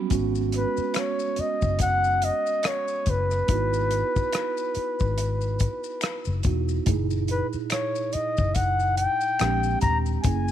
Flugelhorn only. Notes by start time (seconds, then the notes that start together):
0.57 B4
0.99 C#5
1.40 D#5
1.82 F#5
2.24 D#5
2.67 C#5
3.10 B4
7.31 B4
7.72 C#5
8.14 D#5
8.55 F#5
8.98 G5
9.82 A#5
10.23 G#5